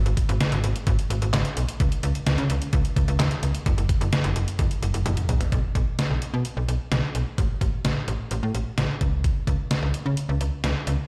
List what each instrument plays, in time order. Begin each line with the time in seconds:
0.06 fm bass G#1, closed hi-hat
0.17 kick, closed hi-hat
0.29 fm bass G#1, closed hi-hat
0.41 snare, closed hi-hat
0.52 fm bass G#1, closed hi-hat
0.64 fm bass G#1, closed hi-hat
0.76 closed hi-hat
0.87 fm bass G#1, kick, closed hi-hat
0.99 closed hi-hat
1.10 fm bass G#1, closed hi-hat
1.22 fm bass G#1, closed hi-hat
1.33 fm bass G#1, snare, clap, closed hi-hat
1.45 closed hi-hat
1.57 fm bass B1, closed hi-hat
1.69 closed hi-hat
1.80 fm bass C#2, kick, closed hi-hat
1.92 closed hi-hat
2.03 fm bass C#2, closed hi-hat
2.15 closed hi-hat
2.27 fm bass C#2, snare, closed hi-hat
2.38 fm bass C#3, closed hi-hat
2.50 fm bass C#2, closed hi-hat
2.62 closed hi-hat
2.73 fm bass C#2, kick, closed hi-hat
2.85 closed hi-hat
2.96 fm bass C#2, kick, closed hi-hat
3.08 fm bass C#2, closed hi-hat
3.19 fm bass D#2, snare, clap, closed hi-hat
3.31 closed hi-hat
3.43 fm bass C#2, closed hi-hat
3.55 closed hi-hat
3.66 fm bass F#1, kick, closed hi-hat
3.78 fm bass F#1, closed hi-hat
3.89 kick, closed hi-hat
4.01 fm bass F#1, closed hi-hat
4.13 snare, closed hi-hat
4.24 fm bass F#1, closed hi-hat
4.36 fm bass F#1, closed hi-hat
4.48 closed hi-hat
4.59 fm bass F#1, kick, closed hi-hat
4.71 closed hi-hat
4.82 fm bass F#1, closed hi-hat
4.94 fm bass F#1, closed hi-hat
5.06 fm bass F#1, closed hi-hat, high tom
5.17 closed hi-hat, mid tom
5.29 fm bass A#1, closed hi-hat, mid tom
5.41 closed hi-hat, floor tom
5.52 fm bass B1, kick, closed hi-hat
5.75 fm bass B1, kick, closed hi-hat
5.99 snare, closed hi-hat
6.10 fm bass B1
6.22 closed hi-hat
6.34 fm bass B2
6.45 closed hi-hat
6.57 fm bass B1
6.68 fm bass B1, closed hi-hat
6.92 fm bass B1, snare, closed hi-hat
7.15 fm bass B1, closed hi-hat
7.38 fm bass A1, kick, closed hi-hat
7.61 fm bass A1, kick, closed hi-hat
7.85 fm bass A1, snare, closed hi-hat
8.08 fm bass A1, closed hi-hat
8.31 fm bass A1, closed hi-hat
8.43 fm bass A2
8.54 fm bass A1, closed hi-hat
8.78 fm bass A1, snare, closed hi-hat
9.01 fm bass C#2, kick, closed hi-hat
9.24 kick, closed hi-hat
9.47 fm bass C#2, kick, closed hi-hat
9.71 snare, closed hi-hat
9.82 fm bass C#2
9.94 closed hi-hat
10.06 fm bass C#3
10.17 closed hi-hat
10.29 fm bass C#2
10.41 fm bass C#2, closed hi-hat
10.64 fm bass C#2, snare, closed hi-hat
10.87 fm bass C#2, closed hi-hat